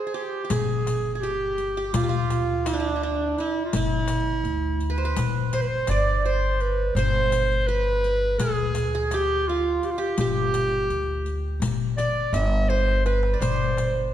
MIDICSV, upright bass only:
0, 0, Header, 1, 2, 480
1, 0, Start_track
1, 0, Tempo, 716846
1, 340, Time_signature, 9, 3, 24, 8
1, 9467, End_track
2, 0, Start_track
2, 0, Title_t, "Upright bass"
2, 0, Program_c, 0, 32
2, 338, Note_on_c, 0, 31, 85
2, 1272, Note_off_c, 0, 31, 0
2, 1294, Note_on_c, 0, 38, 81
2, 2229, Note_off_c, 0, 38, 0
2, 2505, Note_on_c, 0, 31, 85
2, 2954, Note_off_c, 0, 31, 0
2, 2971, Note_on_c, 0, 38, 88
2, 3427, Note_off_c, 0, 38, 0
2, 3462, Note_on_c, 0, 31, 78
2, 3913, Note_off_c, 0, 31, 0
2, 3939, Note_on_c, 0, 31, 104
2, 4631, Note_off_c, 0, 31, 0
2, 4653, Note_on_c, 0, 31, 101
2, 5588, Note_off_c, 0, 31, 0
2, 5615, Note_on_c, 0, 38, 85
2, 6549, Note_off_c, 0, 38, 0
2, 6817, Note_on_c, 0, 31, 93
2, 7271, Note_off_c, 0, 31, 0
2, 7300, Note_on_c, 0, 38, 77
2, 7752, Note_off_c, 0, 38, 0
2, 7767, Note_on_c, 0, 31, 79
2, 8226, Note_off_c, 0, 31, 0
2, 8254, Note_on_c, 0, 31, 107
2, 8950, Note_off_c, 0, 31, 0
2, 8976, Note_on_c, 0, 31, 87
2, 9467, Note_off_c, 0, 31, 0
2, 9467, End_track
0, 0, End_of_file